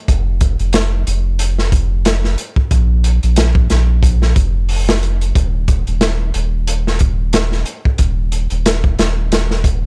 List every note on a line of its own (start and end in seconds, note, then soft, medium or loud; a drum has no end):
0.08 0.56 F1 loud
0.08 kick loud
0.08 closed hi-hat medium
0.41 kick medium
0.41 closed hi-hat medium
0.59 1.04 F1 medium
0.59 closed hi-hat soft
0.73 snare loud
0.73 closed hi-hat medium
1.07 2.36 F1 loud
1.07 closed hi-hat medium
1.39 closed hi-hat medium
1.59 snare soft
1.72 kick medium
1.72 closed hi-hat medium
2.05 snare loud
2.05 closed hi-hat medium
2.24 snare soft
2.38 closed hi-hat medium
2.56 kick loud
2.71 3.19 A#1 loud
2.71 kick loud
2.71 closed hi-hat medium
3.04 closed hi-hat medium
3.23 3.68 A#1 medium
3.23 closed hi-hat soft
3.36 snare loud
3.36 closed hi-hat loud
3.55 kick loud
3.70 4.34 A#1 loud
3.70 snare medium
3.70 closed hi-hat medium
4.03 kick loud
4.03 closed hi-hat medium
4.22 snare soft
4.36 5.33 F1 loud
4.36 kick loud
4.36 closed hi-hat medium
4.69 open hi-hat medium
4.89 snare loud
5.03 closed hi-hat medium
5.21 closed hi-hat soft
5.35 5.84 D#1 loud
5.35 kick loud
5.35 closed hi-hat medium
5.68 kick loud
5.68 closed hi-hat medium
5.87 6.32 D#1 medium
5.87 closed hi-hat soft
6.01 snare loud
6.01 closed hi-hat medium
6.34 7.64 D#1 loud
6.34 closed hi-hat medium
6.67 closed hi-hat loud
6.87 snare soft
6.99 kick medium
6.99 closed hi-hat medium
7.33 snare loud
7.33 closed hi-hat loud
7.52 snare soft
7.66 closed hi-hat medium
7.85 kick medium
7.98 8.47 D#1 loud
7.98 kick loud
7.98 closed hi-hat medium
8.32 closed hi-hat medium
8.50 8.95 D#1 medium
8.50 closed hi-hat soft
8.66 snare loud
8.66 closed hi-hat loud
8.84 kick medium
8.99 9.31 D#1 loud
8.99 snare loud
8.99 closed hi-hat medium
9.32 9.86 D#1 medium
9.32 snare loud
9.32 closed hi-hat medium
9.51 snare soft
9.64 kick medium
9.64 closed hi-hat medium